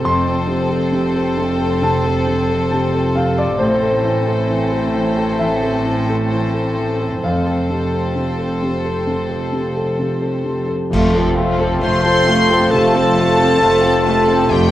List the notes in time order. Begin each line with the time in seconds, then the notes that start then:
Already playing: C3 C4 A4 C5
0.04 F1 F2 C4 A4 C5 C6
0.27 C4
0.33 C5
0.47 C3
0.63 A4
0.70 A4
0.92 C3 C4
1.15 A4
1.22 C5
1.37 C3
1.52 A4
1.60 A4
1.81 C3 A5
2.05 A4
2.12 C5
2.27 C3
2.41 A4
2.49 A4
2.71 C3 C4 A5
2.94 A4
3.02 C5
3.15 C3 F5
3.31 A4
3.38 A4 D5
3.59 A1 A2 C4 A4 C5
3.82 A4
3.90 C5
4.05 E3
4.20 A4
4.28 A4
4.49 E3 C4
4.72 A4
4.81 C5
4.95 E3
5.11 A4
5.18 A4
5.39 E3 E5
5.63 A4
5.71 C5
5.85 E3
6.02 A4
6.10 A4
6.32 E3 C4
6.54 A4
6.63 C5
6.77 E3
6.93 A4
7.00 A4
7.24 F1 F2 C4 A4 C5 F5
7.47 A4
7.56 C5
7.70 C3
7.87 A4
7.92 A4
8.15 C3 C4
8.38 A4
8.49 C5
8.62 C3
8.79 A4
8.85 A4
9.07 C3
9.30 A4
9.40 C5
9.52 C3
9.69 A4
9.77 A4
9.99 C3 C4
10.22 A4
10.31 C5
10.45 C3
10.62 A4
10.68 A4
10.90 F1 F2 A3 C4 F4, concert bass drum, crash
11.14 F3 C4 A4
11.37 A3 C4 F4 A4
11.59 F3 C4 A4 C5
11.80 F1 F2 A3 F4 C5 F5 C6
11.84 A3
12.03 F3 C4 A4 A5
12.26 A3 C4 F4 F5
12.50 F3 C4 A4
12.71 F1 F2 C3 A3 F4 A4 A5
12.94 F3 C4 A4
13.16 A3 C4 F4 A4
13.38 C4 A4 C5
13.42 F3 C4
13.59 F1 F2 A3 F4 C5
13.63 A3 F5
13.81 C4 A4 A5
13.86 F3 C4
14.03 A3 C4 F4
14.08 A3 F5
14.26 C4 A4 C5
14.30 F3 C4
14.46 F2 A3 F4
14.51 F1 F2 A3 C4 F4 G4 G5